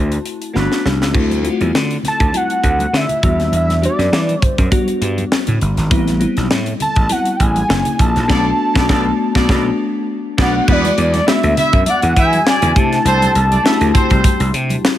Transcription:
Already playing: slap bass D2, horn section A3 F#4 C5, fm electric piano A3 C4 E4 F#4, analog synth lead A5
0.12 closed hi-hat
0.26 closed hi-hat
0.42 closed hi-hat
0.53 slap bass G1, horn section F#3 D4 B4, fm electric piano A3 B3 D4 F#4, snare
0.72 snare
0.85 slap bass C2, snare
1.02 slap bass C#2, snare
1.13 slap bass D2, fm electric piano A3 C4 E4 F#4, kick, crash, muted conga
1.30 closed hi-hat, muted conga, high conga
1.43 fm electric piano A3 C4 E4 F4, closed hi-hat
1.50 fm electric piano F#4
1.60 slap bass E2, closed hi-hat, high conga
1.73 slap bass D3, snare, muted conga
1.91 closed hi-hat
2.03 snare, closed hi-hat, low conga
2.08 analog synth lead A5
2.20 slap bass D2, kick, closed hi-hat
2.32 fm electric piano A3 C4 E4 F#4, closed hi-hat, high conga
2.36 analog synth lead F#5
2.50 closed hi-hat
2.63 slap bass D2, kick, closed hi-hat
2.79 closed hi-hat, high conga
2.93 slap bass D3, analog synth lead E5, snare
3.09 closed hi-hat, muted conga, low conga
3.22 slap bass E2, fm electric piano G3 B3 D4 F#4, kick, closed hi-hat
3.39 slap bass D#2, snare, closed hi-hat
3.52 slap bass E2, closed hi-hat, muted conga
3.56 analog synth lead E5
3.69 snare, closed hi-hat, high conga
3.81 fm electric piano G3 B3 D4 F#4, analog synth lead D5, closed hi-hat
3.99 slap bass F#2, snare, closed hi-hat, high conga
4.12 slap bass E3, snare
4.29 closed hi-hat, muted conga
4.42 analog synth lead C5, kick, closed hi-hat, low conga
4.58 slap bass F#2, kick, closed hi-hat
4.71 fm electric piano G3 B3 D4 F#4, kick, closed hi-hat, muted conga, high conga
4.88 closed hi-hat, muted conga
5.01 slap bass G2, closed hi-hat
5.18 closed hi-hat, high conga
5.32 snare
5.47 slap bass A2, closed hi-hat, low conga
5.61 slap bass G1, closed hi-hat
5.77 slap bass G#1, snare, closed hi-hat
5.90 slap bass A1, fm electric piano G3 B3 C4 E4, kick, closed hi-hat, muted conga
6.07 snare, closed hi-hat, muted conga, high conga
6.20 fm electric piano G3 B3 C4 E4, closed hi-hat
6.37 slap bass B1, snare, closed hi-hat, high conga
6.51 slap bass A2, snare
6.66 closed hi-hat, muted conga
6.80 analog synth lead A5, closed hi-hat, low conga
6.96 slap bass A1, kick, closed hi-hat
7.09 fm electric piano G3 B3 C4 E4, analog synth lead F#5, closed hi-hat, high conga
7.26 closed hi-hat, muted conga
7.36 slap bass A1, analog synth lead G5, kick, closed hi-hat
7.42 analog synth lead G#5
7.56 closed hi-hat, high conga
7.68 slap bass F#1, fm electric piano A#3 C#4 D4 E4, snare
7.85 closed hi-hat, low conga
7.99 slap bass A#1, analog synth lead A5, kick, closed hi-hat
8.16 slap bass A#1, snare, closed hi-hat
8.28 slap bass B1, fm electric piano A3 B3 D4 F#4, horn section B3 A4 D5, kick, snare, crash
8.74 slap bass B1, fm electric piano A3 B3 D4, horn section B3 A4 D5, kick, snare
8.82 fm electric piano F#4
8.88 slap bass B1, fm electric piano A3 B3 D4, horn section B3 A4 D5, kick, snare
8.96 fm electric piano F#4
9.35 slap bass B1, fm electric piano A3 B3 F#4, horn section B3 A4 D5, kick, snare
9.42 fm electric piano D4
9.48 slap bass B1, fm electric piano A3 B3 F#4, horn section B3 A4 D5, kick, snare
9.56 fm electric piano D4
10.37 slap bass B1, fm electric piano A3 B3 F#4, horn section B3 A4 D5, analog synth lead F#5, kick, snare, crash
10.45 fm electric piano D4
10.67 slap bass E2, fm electric piano G#3 B3 D4 F#4, horn section B3 B4, kick, crash
10.72 analog synth lead D5
10.84 snare, closed hi-hat, muted conga, high conga
10.98 slap bass E2, closed hi-hat
11.14 horn section D4 D5, snare, closed hi-hat, high conga
11.26 fm electric piano G#3 B3 D4 F#4, horn section E4 E5, snare, muted conga
11.31 analog synth lead E5
11.43 slap bass D2, closed hi-hat
11.57 horn section E4 E5, snare, closed hi-hat, low conga
11.73 slap bass F#2, kick, closed hi-hat
11.86 horn section D4 D5, analog synth lead F#5, closed hi-hat, muted conga, high conga
12.02 slap bass E2, closed hi-hat
12.16 slap bass E3, horn section E4 E5, analog synth lead G#5, kick, closed hi-hat
12.33 closed hi-hat, high conga
12.47 horn section D4 D5, snare
12.62 slap bass E2, closed hi-hat, low conga
12.75 slap bass C3, fm electric piano A3 D4 E4 G4, analog synth lead A5, kick, closed hi-hat
12.92 snare, closed hi-hat
13.05 slap bass C2, horn section C4 C5, closed hi-hat, muted conga
13.22 closed hi-hat, high conga
13.35 slap bass C2, closed hi-hat
13.51 horn section D4 D5, closed hi-hat, high conga
13.63 fm electric piano A3 D4 E4 F#4, horn section E4 E5, snare
13.71 fm electric piano G4
13.81 slap bass D2, closed hi-hat
13.94 horn section C4 C5, kick, closed hi-hat, low conga
14.10 slap bass C2, kick, closed hi-hat
14.24 kick, closed hi-hat, high conga
14.40 slap bass C2, closed hi-hat, muted conga
14.54 slap bass C3, closed hi-hat
14.70 closed hi-hat, high conga
14.85 snare

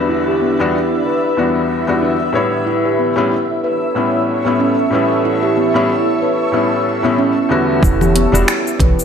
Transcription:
Already playing: felt piano E2 G3 B3 D4 F#4, ambient pad D4 E4 B4 E5
0.09 steel tongue drum E4
0.28 steel tongue drum G4
0.42 steel tongue drum B3
0.59 felt piano E2 G3 B3 D4 F#4
0.74 steel tongue drum E4
1.06 steel tongue drum B4
1.37 felt piano E2 G3 B3 D4 F#4, steel tongue drum B3
1.87 felt piano E2 G3 B3 D4 F#4, steel tongue drum B3
2.02 steel tongue drum D4
2.33 felt piano A2 G3 B3 E4 C#5, steel tongue drum B4
2.67 steel tongue drum E4, ambient pad A4 C#5
2.85 steel tongue drum G4
2.99 steel tongue drum B3
3.16 felt piano A2 G3 B3 C#4 E4
3.32 steel tongue drum E4
3.64 steel tongue drum B4
3.95 felt piano A2 G3 B3 C#4 E4, steel tongue drum B3
4.45 felt piano A2 G3 B3 C#4 E4, steel tongue drum B3
4.60 steel tongue drum C#4
4.90 felt piano A2 G3 B3 C#4, steel tongue drum B4
4.95 felt piano E4
5.25 steel tongue drum E4
5.43 steel tongue drum G4
5.57 steel tongue drum B3
5.74 felt piano A2 G3 B3 C#4 E4
5.90 steel tongue drum E4
6.22 steel tongue drum B4
6.52 felt piano A2 G3 B3 C#4 E4, steel tongue drum B3
7.03 felt piano A2 G3 B3 C#4 E4, steel tongue drum B3
7.18 steel tongue drum C#4
7.49 felt piano E2 D3 G3 B3 F#4, steel tongue drum B4
7.83 fm bass E1, ambient pad E4 B4 D5, steel tongue drum E4, kick, cabasa
8.01 steel tongue drum G4, low conga, cabasa
8.16 steel tongue drum B3, closed hi-hat
8.32 fm bass E1, felt piano G3 B3 D4 F#4, cabasa
8.48 steel tongue drum E4, finger snap, cabasa
8.67 cabasa
8.80 fm bass B1, steel tongue drum B4, kick, closed hi-hat, low conga
8.99 cabasa

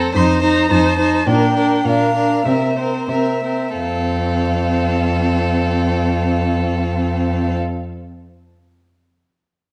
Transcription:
Already playing: viola C4, violin A4
0.15 cello F2, viola D#4, violin C5 C6
0.42 viola D#4, violin C5 A#5
0.70 cello F2, viola D#4, violin C5 A5
0.99 viola D#4, violin C5
1.27 cello A#2, viola D4, violin A#4 G5
1.56 viola D4, violin A#4
1.85 cello A#2, viola D4, violin A#4 F5
2.15 viola D4, violin A#4
2.45 cello C3, viola C4, violin A#4 E5
2.76 viola C4, violin A#4 C5
3.08 cello C3, viola C4, violin A#4 E5
3.43 viola C4, violin A#4
3.76 cello F2, viola C4, violin A4 F5

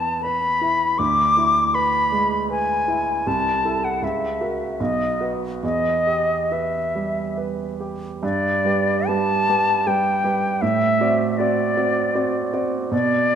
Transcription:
Already playing: grand piano E2 B3 E4 B4, flute A5
0.23 grand piano B4, flute B5
0.61 grand piano E4
0.98 grand piano D2, flute D6
1.37 grand piano E4
1.75 grand piano B4, flute B5
2.12 grand piano G#3
2.50 grand piano B4, flute G#5
2.88 grand piano E4
3.27 grand piano C2, flute A5
3.65 grand piano E4 A4
3.84 flute F#5
4.02 grand piano C#2, flute E5
4.41 grand piano F#4 A#4
4.80 grand piano B1, flute D#5
5.21 grand piano F#4 B4
5.63 grand piano E2, flute D#5
6.07 grand piano G4
6.52 grand piano B4, flute E5
6.95 grand piano G3
7.37 grand piano B4
7.80 grand piano G4
8.23 grand piano G2, flute D5
8.65 grand piano G3 G4 B4
9.08 grand piano G3 G4 B4, flute A5
9.48 grand piano G3 G4 B4
9.87 grand piano G3 G4 B4, flute G5
10.24 grand piano G3 G4 B4
10.62 grand piano A2, flute E5
11.01 grand piano C4 F#4 D5
11.31 flute E5
11.38 grand piano C4 F#4 D5, flute D5
11.76 grand piano C4 F#4 D5
12.15 grand piano C4 F#4 D5
12.53 grand piano C4 F#4 D5
12.91 grand piano B2, flute D5

